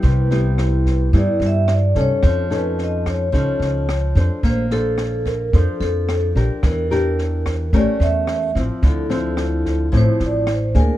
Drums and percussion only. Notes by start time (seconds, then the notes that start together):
0.03 kick, snare
0.31 snare
0.58 cross-stick, snare
0.86 kick, snare
1.13 kick, snare
1.41 snare
1.68 cross-stick, snare
1.95 kick, snare
2.23 kick, cross-stick, snare
2.51 snare
2.78 snare
3.06 kick, cross-stick, snare
3.33 kick, snare
3.61 snare
3.89 cross-stick, snare
4.16 kick, snare
4.43 kick, snare
4.71 snare
4.98 cross-stick, snare
5.26 kick, snare
5.53 kick, snare
5.81 snare
6.09 cross-stick, snare
6.36 kick, snare
6.63 kick, cross-stick, snare
6.91 snare
7.18 snare
7.46 kick, cross-stick, snare
7.73 kick, snare
8.01 snare
8.27 cross-stick, snare
8.55 kick, snare
8.82 kick, snare
9.10 snare
9.37 cross-stick, snare
9.65 kick, snare
9.93 kick, snare
10.20 snare
10.47 cross-stick, snare
10.75 kick, snare